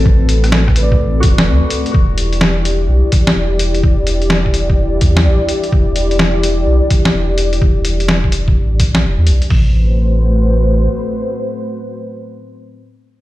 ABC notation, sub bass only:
X:1
M:4/4
L:1/16
Q:"Swing 16ths" 1/4=127
K:Ador
V:1 name="Sub bass" clef=bass
A,,,8 A,,,2 E,,,2 D,, z3 | E,,,8 B,,, z3 E,,,4 | E,,,8 E,,,2 E,,2 A,,, z3 | E,,,8 B,,, z3 E,,,4 |
E,,,8 A,,,3 B,,, E,,, E,, B,,, z | A,,,12 z4 | z16 |]